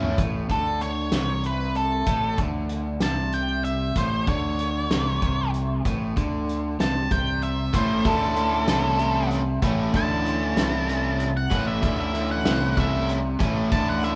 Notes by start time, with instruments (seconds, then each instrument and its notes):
Already playing: overdriven electric guitar A2 E3 A3 C#4 E4
0.03 floor tom
0.18 fingered electric bass A1, overdriven electric guitar A2, kick, closed hi-hat
0.49 fingered electric bass D2, overdriven electric guitar D3, lead electric guitar A4, kick, closed hi-hat
0.81 lead electric guitar C#5, closed hi-hat
1.12 fingered electric bass C2, overdriven electric guitar C3, snare, closed hi-hat
1.43 lead electric guitar B4, closed hi-hat
1.75 lead electric guitar A4, closed hi-hat
2.06 fingered electric bass A1, overdriven electric guitar A2, kick, closed hi-hat
2.38 fingered electric bass D2, overdriven electric guitar D3, kick, closed hi-hat
2.69 closed hi-hat
3.00 fingered electric bass C2, overdriven electric guitar C3, lead electric guitar A5, snare, closed hi-hat
3.32 lead electric guitar G5, closed hi-hat
3.64 lead electric guitar E5, closed hi-hat
3.95 fingered electric bass A1, overdriven electric guitar A2, lead electric guitar C5, kick, closed hi-hat
4.27 fingered electric bass D2, overdriven electric guitar D3, lead electric guitar C#5, kick, closed hi-hat
4.59 closed hi-hat
4.90 fingered electric bass C2, overdriven electric guitar C3, snare, closed hi-hat
5.22 fingered electric bass C2, overdriven electric guitar C3, kick, closed hi-hat
5.54 closed hi-hat
5.85 fingered electric bass A1, overdriven electric guitar A2, kick, closed hi-hat
6.17 fingered electric bass D2, overdriven electric guitar D3, kick, closed hi-hat
6.49 closed hi-hat
6.79 fingered electric bass C2, overdriven electric guitar C3, lead electric guitar A5, snare, closed hi-hat
7.11 fingered electric bass C2, overdriven electric guitar C3, lead electric guitar G5, kick, closed hi-hat
7.42 lead electric guitar E5, closed hi-hat
7.73 fingered electric bass A1, overdriven electric guitar A2 E3 A3 C#4 E4, lead electric guitar C5, kick, closed hi-hat
8.04 fingered electric bass D2, overdriven electric guitar D3 E3 A3 C#4 E4, lead electric guitar A4, kick, closed hi-hat
8.36 overdriven electric guitar E3 A3 C#4 E4, closed hi-hat
8.67 fingered electric bass C2, overdriven electric guitar C3 E3 A3 C#4 E4, snare, closed hi-hat
8.99 overdriven electric guitar E3 A3 C#4 E4, closed hi-hat
9.31 closed hi-hat
9.62 fingered electric bass A1, overdriven electric guitar A2 E3 A3 C#4 E4, kick, closed hi-hat
9.94 fingered electric bass D2, overdriven electric guitar D3 E3 A3 C#4 E4, lead electric guitar A5, kick, closed hi-hat
10.25 overdriven electric guitar E3 A3 C#4 E4, closed hi-hat
10.56 fingered electric bass C2, overdriven electric guitar C3 E3 A3 C#4 E4, snare, closed hi-hat
10.88 overdriven electric guitar E3 A3 C#4 E4, closed hi-hat
11.20 closed hi-hat
11.37 lead electric guitar F#5
11.50 fingered electric bass A1, overdriven electric guitar A2 E3 A3 C#4 E4, kick, closed hi-hat
11.68 lead electric guitar E5
11.82 fingered electric bass D2, overdriven electric guitar D3 E3 A3 C#4 E4, kick, closed hi-hat
12.00 lead electric guitar E5
12.14 overdriven electric guitar E3 A3 C#4 E4, closed hi-hat
12.31 lead electric guitar F#5
12.45 fingered electric bass C2, overdriven electric guitar C3 E3 A3 C#4 E4, snare, closed hi-hat
12.77 fingered electric bass C2, overdriven electric guitar C3 E3 A3 C#4 E4, lead electric guitar E5, kick, closed hi-hat
13.09 closed hi-hat
13.39 fingered electric bass A1, overdriven electric guitar A2 E3 A3 C#4 E4, kick, closed hi-hat
13.72 fingered electric bass D2, overdriven electric guitar D3 E3 A3 C#4 E4, lead electric guitar A5, kick, closed hi-hat
13.90 lead electric guitar F#5
14.03 overdriven electric guitar E3 A3 C#4 E4, lead electric guitar E5, closed hi-hat